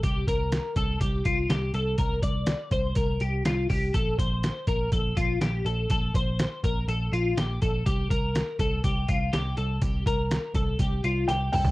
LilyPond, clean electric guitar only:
\new Staff \with { instrumentName = "Clean electric guitar" } { \time 4/4 \key c \dorian \tempo 4 = 123 g'8 bes'4 a'8 g'8 f'8 g'8 a'8 | bes'8 d''4 c''8 bes'8 g'8 f'8 g'8 | a'8 c''4 bes'8 a'8 f'8 g'8 a'8 | a'8 c''4 bes'8 a'8 f'8 g'8 a'8 |
g'8 bes'4 a'8 g'8 f'8 g'8 a'8 | g'8 bes'4 a'8 g'8 f'8 g'8 a'8 | }